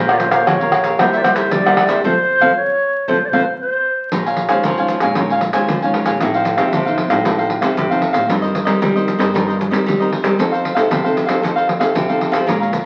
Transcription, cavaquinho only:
0.08 A#4 C#5 F5
0.31 A#4 C#5 F5
0.46 F4 A#4 C#5 F5
0.60 A#4 C#5 F5
0.84 A#4 C#5 F5
0.99 E4 A#4 C5 E5
1.14 A#4 C5 E5
1.25 muted cavaquinho stroke
1.37 A#4 C5 E5
1.65 A#4 C5 E5
1.77 E4 A#4 C5 E5
1.89 A#4 C5 E5
2.04 A4 C5 F5
2.41 A4 C5 F5
3.08 A4 C5 F5
3.33 A4 C5 F5
4.12 A#4 C#5 F5 G#5
4.26 C#5 F5 G#5
4.49 C#5 F5 G#5
4.65 A#4 C#5 F5 G#5
4.78 C#5 F5 G#5
5.02 C#5 F5 G#5
5.17 A#4 C#5 F5 G#5
5.31 C#5 F5 G#5
5.41 muted cavaquinho stroke
5.54 C#5 F5 G#5
5.83 C#5 F5 G#5
5.94 A#4 C#5 F5 G#5
6.06 C#5 F5 G#5
6.20 D#4 A4 C5 F5
6.35 A4 C5 F5
6.57 A4 C5 F5
6.72 D#4 A4 C5 F5
6.86 A4 C5 F5
7.10 A4 C5 F5
7.25 D#4 A4 C5 F5
7.38 A4 C5 F5
7.49 muted cavaquinho stroke
7.61 A4 C5 F5
7.91 A4 C5 F5
8.02 D#4 A4 C5 F5
8.13 A4 C5 F5
8.28 D#4 A#4 C5 D#5
8.42 A#4 C5 D#5
8.65 A#4 C5 D#5
8.81 D#4 A#4 C5 D#5
8.96 A#4 C5 D#5
9.19 A#4 C5 D#5
9.34 D#4 A#4 C5 D#5
9.48 A#4 C5 D#5
9.59 muted cavaquinho stroke
9.71 A#4 C5 D#5
10.00 A#4 C5 D#5
10.11 D#4 A#4 C5 D#5
10.23 A#4 C5 D#5
10.39 D#4 A4 C5 F5
10.52 A4 C5 F5
10.75 A4 C5 F5
10.90 D#4 A4 C5 F5
11.04 A4 C5 F5
11.26 A4 C5 F5
11.42 D#4 A4 C5 F5
11.56 A4 C5 F5
11.68 muted cavaquinho stroke
11.80 A4 C5 F5
12.09 A4 C5 F5
12.19 D#4 A4 C5 F5
12.32 A4 C5 F5
12.46 G#4 C#5 F5 A#5
12.60 C#5 F5 A#5

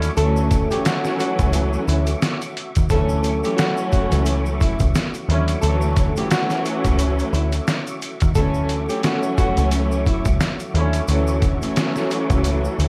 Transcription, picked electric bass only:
0.17 D2
1.39 C#2
1.88 D2
2.77 D#2
2.90 D2
4.12 C#2
4.80 C#2
5.29 D#2
5.63 D2
6.85 C#2
7.33 D2
8.22 D#2
8.35 D2
9.57 C#2
10.26 C#2
10.74 D#2
11.08 D2
12.30 C#2
12.79 D2

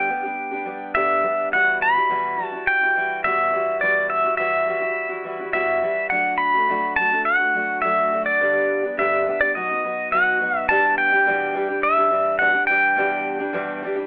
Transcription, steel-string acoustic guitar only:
Already playing: G4
0.09 G3 B3 D4 G4
0.23 G3 B3 D4 G4
0.51 G3 B3 D4 G4
0.65 G3 B3 D4 G4
0.94 G2 D3 G3 B3 D4 G4
1.23 G3 B3 D4 G4
1.52 E2 B2 E3 G3 E4 F#4
1.95 E3 G3 E4 F#4
2.09 E2 B2 E3 G3 E4 F#4
2.37 E3 G3 E4 F#4
2.52 E3 G3 E4 F#4
2.81 E3 G3 E4 F#4
2.95 E3 G3 E4 F#4
3.24 E2 B2 E3 G3 E4 F#4
3.51 E3 G3 E4 F#4
3.82 E2 B2 E3 G3 E4 F#4
4.24 E3 G3 E4 F#4
4.38 E2 B2 E3 G3 E4 F#4
4.67 E3 G3 E4 F#4
4.80 E3 G3 E4 F#4
5.09 E3 G3 E4 F#4
5.24 E3 G3 E4 F#4
5.39 E3 G3 E4 F#4
5.52 E2 B2 E3 G3 E4 F#4
5.82 E3 G3 E4 F#4
6.11 F#3 A3 D4 F#4
6.54 A3 D4 F#4
6.69 F#3 A3 D4 F#4
6.97 F#3 A3 D4 F#4
7.11 A3 D4 F#4
7.39 A3 D4 F#4
7.54 F#3 A3 D4 F#4
7.83 F#3 A3 D4 F#4
8.12 F#3 A3 D4 F#4
8.40 G2 D3 G3 B3 D4 G4
8.83 G3 B3 D4 G4
8.97 G2 D3 G3 B3 D4 G4
9.26 G3 B3 D4 G4
9.41 G3 B3 D4 G4
9.55 B2 F#3 B3 D#4 F#4
9.69 B3 D#4 F#4
9.84 F#3 B3 D#4 F#4
10.11 B2 F#3 B3 D#4 F#4
10.40 F#3 B3 D#4 F#4
10.69 E2 B2 E3 G3 D4 G4
11.12 E3 G3 D4 G4
11.26 E2 B2 E3 G3 D4 G4
11.53 E3 G3 D4 G4
11.68 E3 G3 D4 G4
11.97 E3 G3 D4 G4
12.10 E3 G3 D4 G4
12.39 E2 B2 E3 G3 D4 G4
12.53 E3 G3 D4 G4
12.69 E3 G3 D4 G4
12.96 E2 B2 E3 G3 D4 G4
13.39 E3 G3 D4 G4
13.53 E2 B2 E3 G3 D4 G4
13.82 E3 G3 D4 G4
13.96 E3 G3 D4 G4

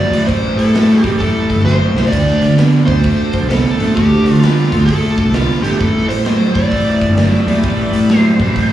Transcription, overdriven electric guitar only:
0.12 A2 E3
0.29 A2 E3
0.73 A2 F#3
1.02 A2 E3
1.19 A2 E3
1.64 A2 F#3
1.96 A2 E3
2.12 D3 A3
2.56 D3 B3
2.86 D3 A3
3.03 D3 A3
3.49 D3 B3
3.78 D3 A3
3.96 D3 A3
4.43 D3 B3
4.72 D3 A3
4.90 D3 A3
5.34 D3 B3
5.63 D3 A3
5.80 A2 E3
6.26 A2 F#3
6.55 A2 E3
6.71 A2 E3
7.18 A2 F#3
7.47 A2 E3
7.64 A2 E3
8.11 A2 F#3
8.40 A2 E3
8.54 A2 E3

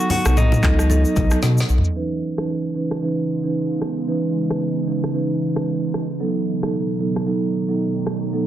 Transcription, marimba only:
Already playing: F#3 B3 D#4 A4
0.25 F#3 B3 D#4 A4
0.63 F#3 B3 D#4 A4
0.90 F#3 B3 D#4 A4
1.31 F#3 B3 D#4 A4
1.96 E3 C#4 D#4 B4
2.38 E3 C#4 D#4 B4
2.75 E3 C#4 D#4 B4
3.02 E3 C#4 D#4 B4
3.44 E3 C#4 D#4 B4
4.08 E3 C#4 D#4 B4
4.50 E3 C#4 D#4 B4
4.87 E3 C#4 D#4 B4
5.14 E3 C#4 D#4 B4
5.56 E3 C#4 D#4 B4
6.20 F#3 B3 D#4 A4
6.62 F#3 B3 D#4 A4
7.00 F#3 B3 D#4 A4
7.27 F#3 B3 D#4 A4
7.69 F#3 B3 D#4 A4
8.33 F#3 B3 D#4 A4

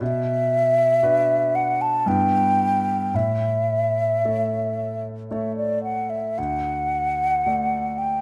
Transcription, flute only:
0.03 E5
1.55 F#5
1.81 A5
2.08 G5
3.16 E5
5.31 E5
5.57 D5
5.84 F#5
6.10 E5
6.38 F#5
7.98 G5

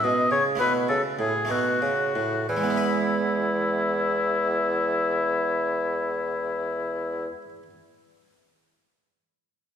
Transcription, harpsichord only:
Already playing: C#4 E4 A4
0.04 B2
0.31 C#3
0.55 A3 E4 F#4
0.60 B2
0.89 C#3
1.19 A2
1.45 A3 D#4 F#4
1.50 B2
1.82 C#3
2.15 A2
2.49 E3
2.56 G#3
2.63 B3
2.70 E4
2.77 B4

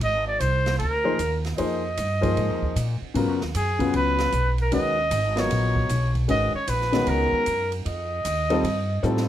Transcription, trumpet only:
0.03 D#5
0.27 D5
0.40 C5
0.79 A#4
1.57 D#5
3.56 G#4
3.96 B4
4.61 A#4
4.74 D#5
5.39 C#5
6.30 D#5
6.55 C#5
6.69 B4
7.08 A#4
7.87 D#5

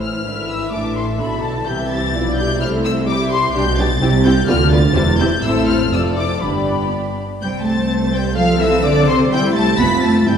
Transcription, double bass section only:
Already playing: A1
0.25 G#1
0.73 A1
1.20 B1
1.67 C2
2.14 B1
2.61 C2
3.55 B1
4.01 C2
4.49 D2
4.96 E1
5.43 A1
5.93 F1
6.43 G1
7.41 C2
9.31 C2
9.78 F1
10.26 G1

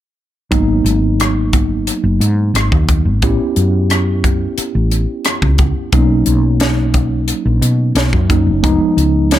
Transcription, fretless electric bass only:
0.51 G#1
0.84 G#1
2.04 F#1
2.20 G#2
2.54 G#1
2.72 D#2
3.05 G#1
3.22 A1
3.57 F#2
4.58 muted fretless electric bass stroke
4.75 A1
5.42 C#2
5.93 B1
6.27 B1
7.45 A#1
7.61 B2
7.95 B1
8.13 F#2
8.46 F#1
8.63 F1
8.97 C#2

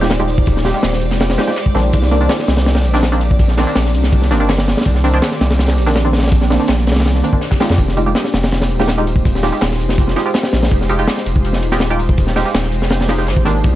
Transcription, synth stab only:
0.01 G#3 D#4 F4 G4
0.20 G#3 D#4 F4 G4
0.65 G#3 D#4 F4 G4
0.74 G#3 D#4 F4 G4
1.38 G#3 D#4 F4 G4
1.47 G#3 D#4 F4 G4
1.75 D#3 A#3 C4 D4
2.11 D#3 A#3 C4 D4
2.21 D#3 A#3 C4 D4
2.94 D#3 A#3 C4 D4
3.12 D#3 A#3 C4 D4
3.58 D#3 A#3 C4 D4
3.67 D#3 A#3 C4 D4
4.31 D#3 A#3 C4 D4
4.40 D#3 A#3 C4 D4
5.04 D#3 A#3 C4 D4
5.14 D#3 A#3 C4 D4
5.87 D#3 A#3 C4 D4
6.05 D#3 A#3 C4 D4
6.50 D#3 A#3 C4 D4
6.60 D#3 A#3 C4 D4
7.24 D#3 A#3 C4 D4
7.33 D#3 A#3 C4 D4
7.60 G#3 D#4 F4 G4
7.97 G#3 D#4 F4 G4
8.06 G#3 D#4 F4 G4
8.79 G#3 D#4 F4 G4
8.98 G#3 D#4 F4 G4
9.43 G#3 D#4 F4 G4
9.52 G#3 D#4 F4 G4
10.16 G#3 D#4 F4 G4
10.26 G#3 D#4 F4 G4
10.89 G#3 D#4 F4 G4
10.99 G#3 D#4 F4 G4
11.72 G#3 D#4 F4 G4
11.90 G#3 D#4 F4 G4
12.36 G#3 D#4 F4 G4
12.45 G#3 D#4 F4 G4
13.09 G#3 D#4 F4 G4
13.18 G#3 D#4 F4 G4
13.45 D#3 A#3 C4 D4

